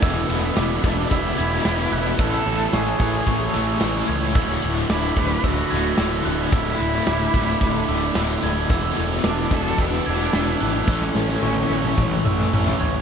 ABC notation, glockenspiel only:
X:1
M:4/4
L:1/8
Q:1/4=110
K:Emix
V:1 name="Glockenspiel"
e'2 d'2 e' g'2 f' | e'2 c'2 c' e'2 g' | e'2 d'2 e' g'2 f' | e'2 d'2 d' e'2 g' |
e'2 d'2 e' g'2 f' | e'2 c'2 c' e'2 g' |]